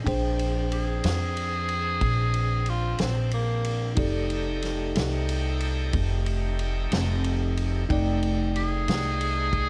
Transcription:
0.04 1.00 A#1 medium
0.04 3.94 C4 medium
0.04 3.93 D4 medium
0.04 3.94 D4 medium
0.04 3.94 G#4 medium
0.04 3.94 C5 medium
0.04 3.93 G5 medium
0.04 kick loud
0.04 ride medium
0.39 ride medium
0.72 2.71 G#4 loud
0.72 ride medium
1.04 1.98 F2 medium
1.04 snare loud
1.04 ride medium
1.37 ride medium
1.69 ride medium
2.01 2.95 A#1 medium
2.01 kick medium
2.01 ride medium
2.34 ride medium
2.66 3.00 F4 loud
2.66 ride medium
2.99 3.94 A#1 medium
2.99 3.32 C4 medium
2.99 snare loud
2.99 ride medium
3.31 3.96 A#3 loud
3.31 ride medium
3.65 ride medium
3.95 4.91 F1 medium
3.95 7.85 A3 medium
3.95 7.84 D#4 medium
3.95 7.84 G4 medium
3.95 7.85 G4 soft
3.95 7.85 A4 soft
3.95 7.86 D5 medium
3.95 kick loud
3.95 ride medium
4.30 ride medium
4.62 snare soft
4.62 ride medium
4.96 5.89 C2 medium
4.96 snare loud
4.96 ride medium
5.29 ride medium
5.60 ride medium
5.93 6.87 F1 medium
5.93 kick medium
5.93 ride medium
6.26 ride medium
6.59 ride medium
6.92 7.85 F1 medium
6.92 snare loud
6.92 ride medium
7.24 ride medium
7.57 ride medium
7.89 8.84 F1 medium
7.89 9.69 A3 medium
7.89 9.69 D#4 medium
7.89 9.69 D5 medium
7.89 9.69 G5 medium
7.89 kick loud
7.89 ride medium
8.23 ride medium
8.56 9.69 G#4 loud
8.56 ride medium
8.88 9.69 C2 medium
8.88 snare loud
8.88 ride medium
9.21 ride medium
9.53 kick medium
9.53 ride medium

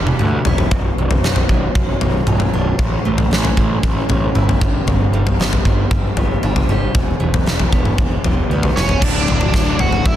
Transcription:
0.00 0.12 E1 medium
0.00 0.72 E3 medium
0.00 0.72 G3 medium
0.00 0.19 B3 medium
0.07 high tom medium
0.19 0.38 D2 medium
0.19 0.72 B3 medium
0.19 mid tom medium
0.45 0.64 E1 medium
0.45 0.72 E4 medium
0.45 floor tom medium
0.58 floor tom medium
0.71 0.90 B0 medium
0.71 1.24 B2 medium
0.71 kick loud
0.71 floor tom medium
0.97 1.16 B0 medium
0.97 1.74 F#2 medium
1.11 floor tom medium
1.24 1.42 B0 medium
1.24 2.00 B2 medium
1.24 snare medium
1.36 floor tom medium
1.49 1.68 B0 medium
1.49 2.26 F#3 medium
1.49 kick medium
1.75 1.93 B0 medium
1.75 2.79 F#2 medium
1.75 kick loud
1.75 floor tom medium
2.01 2.20 B0 medium
2.01 2.79 B2 medium
2.01 floor tom medium
2.27 2.46 B0 medium
2.27 2.79 F#3 medium
2.27 mid tom medium
2.40 floor tom medium
2.53 2.72 B0 medium
2.53 2.79 D4 medium
2.79 2.97 A1 medium
2.79 4.09 A2 medium
2.79 kick loud
2.79 floor tom medium
3.05 3.23 A1 medium
3.05 3.82 A3 medium
3.18 floor tom medium
3.30 3.49 A1 medium
3.30 4.08 C#4 medium
3.30 snare medium
3.45 floor tom medium
3.57 3.76 A1 medium
3.57 4.34 E4 medium
3.57 kick medium
3.83 4.01 A1 medium
3.83 4.61 A3 medium
3.83 kick loud
3.83 floor tom medium
4.09 4.27 A1 medium
4.09 4.61 C#4 medium
4.09 floor tom medium
4.35 4.53 G1 medium
4.35 4.61 E4 medium
4.35 mid tom medium
4.49 floor tom medium
4.61 4.80 G1 medium
4.61 4.86 G2 medium
4.61 kick loud
4.87 5.05 G1 medium
4.87 6.17 G2 medium
4.87 floor tom medium
5.12 5.31 G1 medium
5.12 5.90 G3 medium
5.27 floor tom medium
5.39 5.58 G1 medium
5.39 6.16 B3 medium
5.39 snare medium
5.53 floor tom medium
5.65 5.84 G1 medium
5.65 6.42 D4 medium
5.65 kick medium
5.91 6.09 G1 medium
5.91 6.95 G3 medium
5.91 kick loud
5.91 floor tom medium
6.16 6.35 G1 medium
6.16 6.95 B3 medium
6.16 floor tom medium
6.43 6.61 G1 medium
6.43 6.95 D4 medium
6.43 mid tom medium
6.56 floor tom medium
6.69 6.87 G1 medium
6.69 6.95 G4 medium
6.95 7.13 E1 medium
6.95 8.25 E2 medium
6.95 kick loud
6.95 floor tom medium
7.20 7.39 E1 medium
7.20 7.98 E3 medium
7.34 floor tom medium
7.45 7.64 E1 medium
7.45 8.24 G3 medium
7.45 snare medium
7.59 floor tom medium
7.72 7.91 E1 medium
7.72 8.50 B3 medium
7.72 kick medium
7.85 mid tom medium
7.98 8.17 E1 medium
7.98 9.02 E3 medium
7.98 kick loud
7.98 floor tom medium
8.24 8.42 E1 medium
8.24 9.03 G3 medium
8.24 floor tom medium
8.49 8.68 D2 medium
8.49 9.03 B3 medium
8.63 floor tom medium
8.76 8.94 E1 medium
8.76 9.01 C#4 medium
8.76 9.03 E4 medium
8.76 9.03 C#5 medium
8.76 snare medium
8.89 floor tom medium
9.01 9.24 D1 medium
9.01 10.16 D2 medium
9.01 10.16 A2 medium
9.01 10.16 D3 loud
9.01 10.16 F#3 medium
9.01 10.16 A3 medium
9.01 10.16 D4 loud
9.01 9.77 D4 medium
9.01 9.83 D5 medium
9.01 kick loud
9.01 floor tom medium
9.01 crash loud
9.28 9.51 D1 medium
9.28 10.16 A2 medium
9.28 floor tom medium
9.41 floor tom medium
9.54 9.98 D1 medium
9.54 10.16 F#3 medium
9.54 kick loud
9.54 snare medium
9.79 10.16 A3 medium
9.79 10.04 F#4 medium
9.79 10.06 F#5 medium
9.79 floor tom medium
9.93 floor tom medium
10.05 10.16 F#1 medium
10.05 10.16 D3 medium
10.05 10.14 E4 medium
10.05 10.13 E5 medium
10.05 kick loud
10.05 floor tom medium

